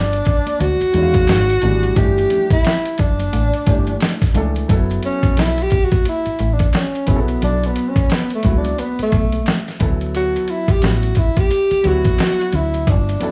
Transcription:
Already playing: G1 D4
0.13 closed hi-hat, maracas
0.25 kick, closed hi-hat, low conga, maracas
0.46 closed hi-hat, high conga, maracas
0.60 D2 F#4, closed hi-hat, maracas
0.80 muted fingered electric bass stroke, closed hi-hat, maracas
0.93 E2 D#3 G#3 C#4 E4, closed hi-hat, maracas
1.02 F5
1.14 kick, closed hi-hat, high conga, maracas
1.27 G#1, snare, closed hi-hat, maracas
1.48 closed hi-hat, maracas
1.61 G#1 E3 G3 A3 D4, closed hi-hat, low conga, maracas
1.83 closed hi-hat, maracas
1.95 G1 E3 A3 D4 G4, kick, closed hi-hat, maracas
2.17 closed hi-hat, maracas
2.30 closed hi-hat, low conga, maracas
2.50 E4, kick, closed hi-hat, high conga, maracas
2.64 snare, closed hi-hat, maracas
2.85 closed hi-hat, maracas
2.98 F#1 D4, kick, closed hi-hat, low conga, maracas
3.19 closed hi-hat, high conga, maracas
3.33 A1, closed hi-hat, maracas
3.53 closed hi-hat, maracas
3.66 G1 E3 A3 C#4 G4, kick, closed hi-hat, maracas
3.74 D4
3.87 closed hi-hat, high conga, maracas
4.00 snare, closed hi-hat, maracas
4.21 kick, snare, closed hi-hat, maracas
4.34 C#2 E3 A3 D4 A4, closed hi-hat, low conga, maracas
4.55 closed hi-hat, maracas
4.68 F#1 F#3 B3 E4 A4, kick, closed hi-hat, maracas
4.89 closed hi-hat, maracas
5.03 C#4, closed hi-hat, maracas
5.23 kick, closed hi-hat, high conga, maracas
5.37 B1 E4, snare, closed hi-hat, maracas
5.58 closed hi-hat, maracas
5.63 G4
5.70 kick, closed hi-hat, low conga, maracas
5.85 F#4
5.92 kick, closed hi-hat, high conga, maracas
6.05 E4, closed hi-hat, high conga, maracas
6.26 muted fingered electric bass stroke, closed hi-hat, maracas
6.39 A1, closed hi-hat, maracas
6.53 D4
6.59 kick, closed hi-hat, high conga, maracas
6.70 D4, closed hi-hat
6.75 C#4, snare, maracas
6.94 closed hi-hat, maracas
7.06 B1 F#3 B3 E4 G#4, kick, closed hi-hat, low conga, maracas
7.16 A4
7.21 B3
7.28 closed hi-hat, maracas
7.42 B1 D4, closed hi-hat, maracas
7.62 closed hi-hat, maracas
7.67 B3
7.76 closed hi-hat, maracas
7.89 C#4
7.96 kick, closed hi-hat, high conga, maracas
8.10 B3, snare, closed hi-hat, maracas
8.30 closed hi-hat, maracas
8.34 A3
8.43 C#2 F#3 B3 E4 F#4, kick, closed hi-hat, low conga, maracas
8.57 D4
8.65 closed hi-hat, high conga, maracas
8.78 B3, closed hi-hat, high conga, maracas
8.98 A3, muted fingered electric bass stroke, closed hi-hat, maracas
9.12 B1, kick, closed hi-hat, maracas
9.32 closed hi-hat, high conga, maracas
9.46 snare, closed hi-hat, maracas
9.67 snare, closed hi-hat, maracas
9.79 D2 E3 B3 E4 A4, kick, closed hi-hat, low conga, maracas
9.86 F#3
10.00 closed hi-hat, maracas
10.14 F#4, closed hi-hat, maracas
10.34 closed hi-hat, maracas
10.48 E4, closed hi-hat, maracas
10.68 G4, kick, closed hi-hat, high conga, maracas
10.81 A1 F#3 B3 E4 F#4, snare, closed hi-hat, maracas
11.03 closed hi-hat, maracas
11.15 E4, kick, closed hi-hat, low conga, maracas
11.37 G4, kick, closed hi-hat, high conga, maracas
11.51 closed hi-hat, high conga, maracas
11.71 muted fingered electric bass stroke, closed hi-hat, maracas
11.83 D2 F#3 B3 E4 F#4, closed hi-hat, maracas
12.04 kick, closed hi-hat, high conga, maracas
12.18 snare, closed hi-hat, maracas
12.39 closed hi-hat, maracas
12.53 D2 E4, closed hi-hat, low conga, maracas
12.74 closed hi-hat, maracas
12.87 G1 D4, kick, closed hi-hat, maracas
13.08 closed hi-hat, high conga, maracas
13.20 F#3 B3 E4 A4, closed hi-hat, low conga, maracas

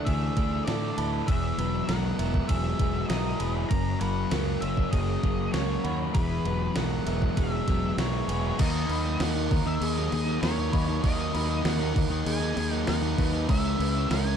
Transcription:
Already playing: D3 A3 D4
0.05 D2 E3 A3 G#4 E5, kick, ride
0.37 D2 D3 A3 G#4, kick, ride
0.65 A2 A3 D4 A4 D5, snare, ride
0.98 D2 E4 A4 B4, ride
1.27 E1 E2 E3 G#4 E5, kick, ride
1.58 E1 F#3 B3 B4, snare, ride
1.88 B1 F#3 G#3 A#4 F#5, snare, ride
2.19 E1 B3 E4 A#4, ride
2.34 kick
2.48 E1 F#3 G#3 G#4 E5, kick, ride
2.79 E1 F#3 B3 G#4, kick, ride
3.09 B1 G#3 E4 A#4 D#5, snare, ride
3.40 E1 E4 G#4 B4, ride
3.69 F#1 F#2 A#4 A#5, kick, ride
4.00 F#1 F#3 A#3 F#5 B5, ride
4.31 C#2 F#3 A#3 A#4, snare, ride
4.61 F#1 C#4 A#4 E5, ride
4.77 kick
4.91 F#1 F#3 A#3 G#4 D#5, kick, ride
5.23 F#1 F#3 A#3 G#4, kick, ride
5.53 C#2 A#3 C#4 A#4 C#5, snare, ride
5.84 D#2 F#4 B5, ride
6.14 E1 E2 E3 G#4 B4, kick, ride
6.45 E1 F#3 B3 B4, ride
6.75 B1 F#3 G#3 A#4 F#5, snare, ride
7.06 E1 B3 E4 A#4, ride
7.22 kick
7.37 E1 F#3 G#3 G#4 E5, kick, ride
7.68 E1 F#3 B3 G#4, kick, ride
7.97 B1 G#3 E4 A#4 C#5, snare, ride
8.28 E1 F#4 G#4 B4, ride
8.58 D#2 D#3 F#3 A#3 D#4 A#4 D#5, kick, crash
8.89 D#2 D#3 A#3 D#4 B5, crash
9.05 F#3 A#3 D#4
9.20 D#2 D#3 F#3 A#3 D#4 A#4 F#5, snare, crash
9.35 A#3 D#4
9.51 D#2 D#3 F#3 A#3 D#4 A#4, muted distorted electric guitar stroke, kick, crash
9.66 A#3 D#4 E5, muted overdriven electric guitar stroke
9.81 D#2 G#4 E5, crash
9.92 D#4 D#5
9.97 F#3 A#3 D#4
10.12 D#2 D#3 A#3 D#4 G#4, muted overdriven electric guitar stroke, snare, crash
10.26 F#3 A#3 D#4
10.41 D#2 D#3 F#3 A#3 D#4 A#4 C#5, snare, crash
10.45 D#4
10.58 A#3 D#4
10.71 D#2 D#3 F#3 A#3 D#4 B5, kick, crash
10.86 F#3 A#3 D#4
10.91 A#3
11.02 D#2 D#3 F#3 A#3 D#4 A#4 D#5, kick, crash
11.06 D#4
11.34 D#2 D#3 A#3 D#4 B5, crash
11.48 F#3 A#3 D#4
11.63 D#2 D#3 F#3 A#3 D#4 A#4 F#5, snare, crash
11.80 A#3 D#4
11.94 D#2 D#3 F#3 A#3 D#4 A#4, muted distorted electric guitar stroke, kick, crash
12.10 A#3 D#4, muted overdriven electric guitar stroke
12.26 D#2 G#4 G#5, crash
12.40 F#3 A#3 D#4
12.56 D#2 D#3 A#3 D#4 G#4, muted overdriven electric guitar stroke, snare, crash
12.71 F#3 A#3 D#4 F#5
12.87 D#2 D#3 F#3 A#3 D#4 A#4 F#5, snare, crash
13.02 A#3 D#4
13.18 D#2 D#3 F#3 A#3 D#4 B4, kick, crash
13.32 A#3 D#4
13.36 F#3
13.48 C#2 C#3 G#3 C#4 E4 A#4 E5, kick, crash
13.78 C#2 C#3 G#3 C#4 B4, crash
13.94 G#3 C#4 E4
14.09 C#2 C#3 G#3 C#4 E4 A#4 G#5, snare, crash
14.25 G#3 C#4

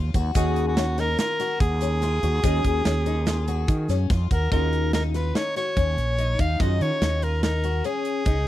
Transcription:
Already playing: D#2 F4
0.14 D#2 F#4, kick, closed hi-hat, shaker
0.34 D#2 D#3 C#4 F#4 G#4, kick, closed hi-hat, shaker
0.56 closed hi-hat
0.68 F#4
0.77 C#4, snare, closed hi-hat, shaker
0.98 D#4 A#4, snare, closed hi-hat
1.19 F4 A#4, snare, closed hi-hat, shaker
1.40 F#4, snare, closed hi-hat
1.60 D#2 G#4, kick, closed hi-hat, shaker
1.81 C#4, closed hi-hat, shaker
2.02 F4, snare, closed hi-hat
2.23 D#2 F#4, closed hi-hat, shaker
2.43 D#2 D#3 C#4 F#4 G#4, kick, closed hi-hat, shaker
2.65 D#2, kick, closed hi-hat
2.85 D#2 C#4, snare, closed hi-hat, shaker
3.06 D#4, closed hi-hat, shaker
3.27 F4, snare, closed hi-hat, shaker
3.48 F#4, closed hi-hat, shaker
3.68 D#3, kick, closed hi-hat, shaker
3.89 F#2 C#4, snare, closed hi-hat, shaker
4.10 F2 F4, kick, snare, closed hi-hat
4.31 D#2 F#4 A#4, kick, closed hi-hat, shaker
4.51 D#2 D#3 C#4 D#4 F4 F#4 G#4 A#4, kick, closed hi-hat
4.73 closed hi-hat
4.93 D#4 A#4, snare, closed hi-hat
5.14 F4 B4, snare, closed hi-hat
5.35 D#4 C#5, snare, closed hi-hat
5.56 F#4 C#5, snare, closed hi-hat
5.77 D#2 C#4, kick, closed hi-hat
5.97 A#1, closed hi-hat
6.18 D#4, closed hi-hat
6.39 D#2 D#4 F5, kick, closed hi-hat
6.59 F#2 D#3 C#4 D#4 F4 F#4 G#4 D#5, kick, closed hi-hat
6.81 D#3 C#5, closed hi-hat
7.01 D#2 D#4, snare, closed hi-hat
7.22 F4 A#4, closed hi-hat
7.43 D#4 A#4, snare, closed hi-hat
7.64 F#4, closed hi-hat
7.85 C#4 G#4, closed hi-hat
8.05 closed hi-hat
8.26 C#2 D#4, kick, closed hi-hat

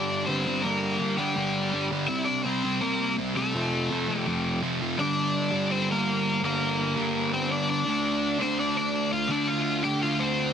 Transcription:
Already playing: G2 D3 G3 D4 D5
0.26 G2 D3 G3 C4 C5
0.46 G2 D3 G3
0.62 G2 D3 G3 A#3 A#4
0.99 G2 D3 G3
1.17 G2 D3 G3 G4
1.36 G2 D3 G3
1.73 G2 D3 G3
1.91 G2 D3 G3
2.08 C3 G3 C4 E4 E5
2.25 D4 D5
2.44 C3 G3 C4 C5
2.63 C3 G3 C4
2.81 C3 G3 A#3 C4 A#4
3.17 C3 G3 C4
3.35 C3 G3 A3 C4 A4
3.54 F2 C3 F3
3.90 F2 C3 F3
4.08 F2 C3 F3
4.20 G4
4.26 F2 C3 F3
4.62 F2 C3 F3
4.81 F2 C3 F3
4.97 G2 D3 G3 D4 D5
5.51 G2 D3 G3
5.71 C4 C5
5.91 A#3 A#4
6.41 G2 D3 G3 A#3
6.45 A#4
6.96 G2 D3 G3
7.33 C4 C5
7.52 D4 D5
7.70 D4 D5
7.85 D3 A3 D4
8.39 A3 C4 D4 C5
8.43 D3
8.59 D4 D5
8.77 D4 D5
9.13 F4 F5
9.28 D3 A3 D4 D5
9.48 F4 F5
9.83 D3 A3 D4 G4 G5
10.03 F4 F5
10.19 C4 C5

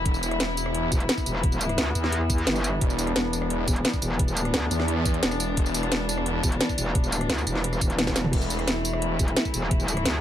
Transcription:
Already playing: E3 B3 E4
0.06 E1, kick, closed hi-hat
0.14 tambourine
0.23 closed hi-hat, tambourine
0.31 cross-stick, closed hi-hat
0.40 snare, closed hi-hat
0.57 closed hi-hat, tambourine
0.66 cross-stick
0.75 closed hi-hat
0.92 E1, kick, closed hi-hat, tambourine
1.00 closed hi-hat
1.09 snare, closed hi-hat
1.18 kick, tambourine
1.26 E1, closed hi-hat, tambourine
1.35 cross-stick
1.43 kick, closed hi-hat
1.52 tambourine
1.61 closed hi-hat, tambourine
1.69 cross-stick, closed hi-hat
1.78 D2, snare, closed hi-hat
1.95 E2, closed hi-hat, tambourine
2.04 cross-stick, snare
2.12 closed hi-hat
2.21 cross-stick
2.30 kick, closed hi-hat, tambourine
2.38 closed hi-hat
2.47 G1, snare, closed hi-hat
2.56 cross-stick, tambourine
2.64 closed hi-hat, tambourine
2.81 E1 D4, kick, closed hi-hat
2.90 tambourine
2.99 closed hi-hat, tambourine
3.07 cross-stick, closed hi-hat
3.16 snare, closed hi-hat
3.33 closed hi-hat, tambourine
3.42 cross-stick
3.50 closed hi-hat
3.68 E1, kick, closed hi-hat, tambourine
3.76 closed hi-hat
3.85 snare, closed hi-hat
3.93 kick, tambourine
4.02 E1, closed hi-hat, tambourine
4.11 cross-stick
4.19 kick, closed hi-hat
4.28 tambourine
4.37 closed hi-hat, tambourine
4.45 cross-stick, closed hi-hat
4.54 D2, snare, closed hi-hat
4.71 E2, closed hi-hat, tambourine
4.80 cross-stick, snare
4.88 closed hi-hat
4.97 cross-stick
5.05 kick, closed hi-hat, tambourine
5.14 closed hi-hat
5.23 E1, snare, closed hi-hat
5.31 cross-stick, tambourine
5.40 closed hi-hat, tambourine
5.57 E1, kick, closed hi-hat
5.66 tambourine
5.74 closed hi-hat, tambourine
5.83 cross-stick, closed hi-hat
5.92 snare, closed hi-hat
6.09 closed hi-hat, tambourine
6.18 cross-stick
6.26 closed hi-hat
6.43 E1, kick, closed hi-hat, tambourine
6.52 closed hi-hat
6.61 snare, closed hi-hat
6.69 kick, tambourine
6.78 E1, closed hi-hat, tambourine
6.86 cross-stick
6.95 kick, closed hi-hat
7.04 tambourine
7.12 closed hi-hat, tambourine
7.21 cross-stick, closed hi-hat
7.30 D2, snare, closed hi-hat
7.38 tambourine
7.47 E1, closed hi-hat, tambourine
7.56 cross-stick, snare
7.64 closed hi-hat
7.73 cross-stick, tambourine
7.81 E1, kick, closed hi-hat, tambourine
7.90 closed hi-hat
7.99 snare, closed hi-hat, high tom
8.07 kick, cross-stick, snare, tambourine
8.16 snare, closed hi-hat, tambourine
8.24 mid tom
8.33 E1 A3 E4, kick, closed hi-hat, crash
8.42 tambourine
8.50 closed hi-hat, tambourine
8.59 cross-stick, closed hi-hat
8.68 snare, closed hi-hat
8.85 closed hi-hat, tambourine
8.93 cross-stick
9.02 closed hi-hat
9.19 E1, kick, closed hi-hat, tambourine
9.28 closed hi-hat
9.37 snare, closed hi-hat
9.45 kick, tambourine
9.54 E1, closed hi-hat, tambourine
9.62 cross-stick
9.71 kick, closed hi-hat
9.80 tambourine
9.88 closed hi-hat, tambourine
9.97 cross-stick, closed hi-hat
10.05 D2, snare, closed hi-hat

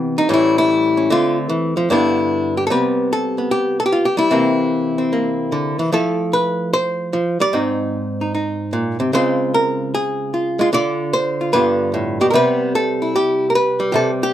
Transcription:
Already playing: C3 E3 B3 G4
0.18 D#4
0.29 A2 E3 G3 C#4
0.34 E4
0.58 E4
0.97 C#4
1.10 D3 A3 C4 F4
1.49 E3
1.77 F3
1.90 G2 D3 B3 D4 E4
2.57 G4
2.67 C3 A4
2.71 G3 B3 B4
3.13 A4
3.38 B3
3.51 G4
3.80 A4
3.86 G4
3.92 F4
4.05 G4
4.17 G3 E4
4.31 C3 E3 A#3 C4
4.98 C4
5.13 A#3
5.52 D3
5.79 E3
5.92 F3 A3 E4 A4
6.33 B4
6.73 C5
7.13 F3
7.40 G3 D5
7.53 G#2 C4 D#4
8.21 D#4
8.35 D#4
8.73 A#2
9.00 C3
9.13 C#3 G#3 C4 F4 C5
9.54 A#4
9.94 G#4
10.34 F4
10.59 G#3 F4
10.73 D3 D4 F4 D5
11.13 C5
11.41 F4
11.53 G2 D3 B3 F4 B4
11.94 A2
12.21 B2 G4
12.30 C3 G3 A#4
12.35 B3 B4
12.75 A4
13.02 E4
13.16 G4
13.50 A#4
13.55 B4
13.80 G3
13.92 C3 G4 A4
14.23 G4

